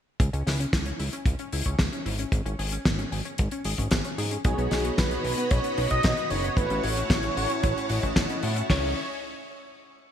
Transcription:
0.20 C#2, kick, closed hi-hat
0.33 C#2 C#4, closed hi-hat
0.47 C#2 E4, snare, open hi-hat
0.60 C#4, closed hi-hat
0.73 C#2, kick, snare, closed hi-hat
0.86 C#4, closed hi-hat
1.00 C#2 E4, open hi-hat
1.13 C#4, closed hi-hat
1.25 C#2, kick, closed hi-hat
1.39 C#4, closed hi-hat
1.52 C#2 E4, open hi-hat
1.66 C#2 C#4, kick, closed hi-hat
1.79 C#2, kick, snare, closed hi-hat
1.93 C#4, closed hi-hat
2.06 G#1 E4, open hi-hat
2.19 C#4, closed hi-hat
2.32 G#1, kick, closed hi-hat
2.45 G#1 C#4, closed hi-hat
2.59 G#1 G#4, open hi-hat
2.72 C#4, closed hi-hat
2.85 G#1, kick, snare, closed hi-hat
2.99 C#4, closed hi-hat
3.12 G#1 G#4, open hi-hat
3.25 C#4, closed hi-hat
3.38 G#1, kick, closed hi-hat
3.51 C#4, closed hi-hat
3.64 G#1 G#4, open hi-hat
3.78 G#1 C#4, kick, closed hi-hat
3.91 G#1, kick, snare, closed hi-hat
4.05 C#4, closed hi-hat
4.18 G#2 G#4, open hi-hat
4.31 C#4, closed hi-hat
4.45 B1 B2 B3 D#4 F#4 G#4 C#5 D#5 B5, kick, closed hi-hat
4.58 B1 B3, closed hi-hat
4.71 B1 D#4, snare, open hi-hat
4.85 B3, closed hi-hat
4.98 B1 B4, kick, snare, closed hi-hat
5.11 B3, closed hi-hat
5.24 B1 D#4, open hi-hat
5.38 B3, closed hi-hat
5.51 B1 C#5, kick, closed hi-hat
5.64 B3, closed hi-hat
5.78 B1 D#4, open hi-hat
5.90 B1 B3 D#5, kick, closed hi-hat
6.03 B1 B2 B3 D#4 F#4 D#5, kick, snare, closed hi-hat
6.17 B3, closed hi-hat
6.30 F#1 D#4 C#5, open hi-hat
6.44 B3, closed hi-hat
6.57 A1 A2 A3 E4 F#4 B4 C#5 F#5 A5, kick, closed hi-hat
6.70 A1 C#4, closed hi-hat
6.83 A1 F#4 C#5, open hi-hat
6.97 C#4, closed hi-hat
7.10 A1, kick, snare, closed hi-hat
7.23 C#4, closed hi-hat
7.37 A1 F#4, open hi-hat
7.50 C#4, closed hi-hat
7.63 A1, kick, closed hi-hat
7.77 C#4, closed hi-hat
7.89 A1 A2 A3 E4 F#4 D#5, open hi-hat
8.03 A1 C#4, kick, closed hi-hat
8.16 A1, kick, snare, closed hi-hat
8.29 C#4, closed hi-hat
8.43 A2 A3 E4 F#4 E5, open hi-hat
8.56 C#4, closed hi-hat
8.69 C#2 G#3 C#4 D#4 E4 C#5 D#5 E5 G#5, kick, snare, open hi-hat

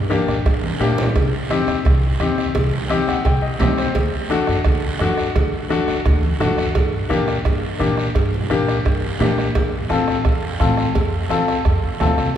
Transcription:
0.10 A#3 D4 G4, bombo rim, high conga, short guiro
0.28 A#2, bombo rim, short guiro
0.46 G2, bombo low, bombo rim, cowbell, long guiro
0.64 high conga
0.80 A#2 A#3 D4 G4, bombo rim, low timbale, short guiro
0.98 bombo rim, low conga, short guiro
1.16 C2, bombo low, bombo rim, cowbell, long guiro
1.50 C4 D#4 G4, bombo rim, high conga, short guiro
1.67 D#2, bombo rim, short guiro
1.85 C2, bombo low, bombo rim, cowbell, long guiro
2.19 D#2 C4 D#4 G4, bombo rim, high conga, short guiro
2.38 bombo rim, short guiro
2.55 C2, bombo low, bombo rim, cowbell, long guiro
2.73 low conga
2.89 C4 D#4 G4, bombo rim, high conga, short guiro
3.07 D#2 F#5, bombo rim, short guiro
3.25 C2 G5, bombo low, bombo rim, cowbell, long guiro
3.42 D#5
3.59 D#2 C4 D#4 G4 D#5, bombo low, bombo rim, high conga, low conga, low timbale, short guiro
3.77 C5, bombo rim, short guiro
3.95 D2, bombo low, bombo rim, cowbell, long guiro
4.30 A3 D4 F#4, bombo rim, high conga, short guiro
4.47 F#2, bombo rim, short guiro
4.65 D2, bombo low, bombo rim, cowbell, long guiro
4.99 F#2 A3 D4 F#4, bombo rim, high conga, short guiro
5.18 bombo rim, short guiro
5.36 D2, bombo low, bombo rim, cowbell, long guiro
5.70 A3 D4 F#4, bombo rim, high conga, short guiro
5.88 F#2, bombo rim, short guiro
6.06 D2, bombo low, bombo rim, cowbell, long guiro
6.23 high conga
6.40 F#2 A3 D4 F#4, bombo rim, high conga, low conga, short guiro
6.58 bombo rim, short guiro
6.75 G2, bombo low, bombo rim, cowbell, long guiro
7.09 A#2 A#3 D4 G4, bombo rim, high conga, short guiro
7.28 bombo rim, short guiro
7.45 G2, bombo low, bombo rim, cowbell, long guiro
7.79 A#2 A#3 D4 G4, bombo rim, high conga, short guiro
7.97 bombo rim, short guiro
8.15 G2, bombo low, bombo rim, cowbell, long guiro
8.34 low conga
8.50 A#2 A#3 D4 G4, bombo rim, high conga, short guiro
8.68 bombo rim, short guiro
8.85 G2, bombo low, bombo rim, cowbell, long guiro
9.20 A#2 A#3 D4 G4, bombo rim, high conga, low conga, low timbale, short guiro
9.38 bombo rim, short guiro
9.55 F2, bombo low, bombo rim, cowbell, long guiro
9.89 A2 C4 F4 A4, bombo rim, high conga, short guiro
10.08 bombo rim, short guiro
10.25 F2, bombo low, bombo rim, cowbell, long guiro
10.60 A2 C4 F4 A4, bombo low, bombo rim, high conga, short guiro
10.77 bombo rim, short guiro
10.95 F2, bombo low, bombo rim, cowbell, long guiro
11.29 A2 C4 F4 A4, bombo rim, high conga, short guiro
11.48 bombo rim, short guiro
11.65 F2, bombo low, bombo rim, cowbell, long guiro
11.83 D#2
12.00 D2 C4 F4 A4, bombo rim, high conga, low conga, low timbale, short guiro
12.18 C2, bombo rim, short guiro

